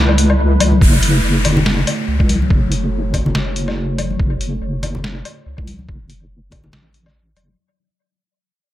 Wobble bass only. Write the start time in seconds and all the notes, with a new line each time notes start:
Already playing: C#2
0.82 F#1
1.24 F#1
2.08 C#2
2.51 F#1
3.35 F#1
4.20 F#1
4.62 F#1
5.47 C#2
5.89 F#1
6.73 A1
7.37 F#1